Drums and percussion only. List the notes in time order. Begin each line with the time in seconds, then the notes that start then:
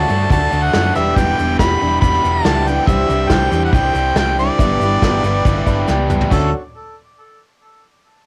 0.09 open hi-hat, shaker
0.30 kick, open hi-hat, shaker
0.52 open hi-hat, shaker
0.73 snare, open hi-hat, shaker
0.95 open hi-hat, shaker
1.16 kick, open hi-hat, shaker
1.38 open hi-hat, shaker
1.59 kick, snare, open hi-hat, shaker
1.81 open hi-hat
2.02 kick, open hi-hat, shaker
2.13 snare
2.24 open hi-hat, shaker
2.45 snare, open hi-hat, shaker
2.66 open hi-hat, shaker
2.87 kick, open hi-hat, shaker
3.08 open hi-hat, shaker
3.30 kick, snare, open hi-hat, shaker
3.51 open hi-hat, shaker
3.72 kick, open hi-hat, shaker
3.94 open hi-hat, shaker
4.16 snare, open hi-hat, shaker
4.38 open hi-hat, shaker
4.59 kick, open hi-hat, shaker
4.81 open hi-hat, shaker
5.02 kick, snare, open hi-hat, shaker
5.24 open hi-hat, shaker
5.45 kick, open hi-hat, shaker
5.67 kick, open hi-hat, shaker
5.88 snare, shaker
6.10 mid tom, shaker
6.21 floor tom
6.31 kick, crash, shaker